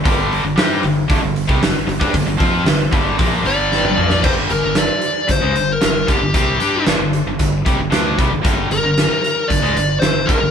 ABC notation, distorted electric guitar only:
X:1
M:4/4
L:1/16
Q:1/4=114
K:Gm
V:1 name="Distorted electric guitar" clef=bass
[G,,D,G,]3 [G,,D,] [G,DG]2 [G,,D,]2 [G,,D,] [G,,D,]2 [C,G,] [G,,D,]2 [G,,D,] [G,D] | [G,,D,] [G,,D,] [F,CF]2 [G,,D,]2 [G,,D,G,]2 [B,,F,B,]2 [G,,D,G,]4 [B,,F,B,]2 | [G,,D,G,]2 [G,,D,] [G,,D,]2 z3 [G,,D,] [^C,_A,] [G,,D,]2 [G,,D,]2 [G,,D,] [G,,D,] | [C,G,C]2 [G,DG]2 [G,,D,] [G,,D,]2 [G,,D,] [G,,D,]2 [C,G,] [G,,D,] [D,A,D]2 [C,G,] [G,,D,] |
[G,,D,G,]2 [G,,D,] [G,,D,]2 z3 [G,,D,] [^C,_A,] [G,,D,]2 [G,,D,]2 [G,,D,] [G,,D,] |]